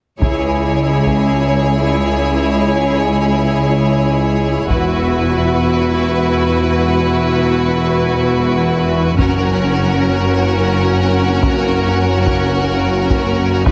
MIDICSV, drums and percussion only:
0, 0, Header, 1, 2, 480
1, 0, Start_track
1, 0, Tempo, 500000
1, 13167, End_track
2, 0, Start_track
2, 0, Title_t, "Taiko and cinematic ensemble drums"
2, 207, Note_on_c, 9, 41, 53
2, 303, Note_off_c, 9, 41, 0
2, 1016, Note_on_c, 9, 41, 33
2, 1112, Note_off_c, 9, 41, 0
2, 4510, Note_on_c, 9, 41, 58
2, 4606, Note_off_c, 9, 41, 0
2, 8817, Note_on_c, 9, 41, 64
2, 8913, Note_off_c, 9, 41, 0
2, 10970, Note_on_c, 9, 41, 89
2, 11066, Note_off_c, 9, 41, 0
2, 11772, Note_on_c, 9, 41, 74
2, 11868, Note_off_c, 9, 41, 0
2, 12577, Note_on_c, 9, 41, 67
2, 12673, Note_off_c, 9, 41, 0
2, 13115, Note_on_c, 9, 41, 92
2, 13167, Note_off_c, 9, 41, 0
2, 13167, End_track
0, 0, End_of_file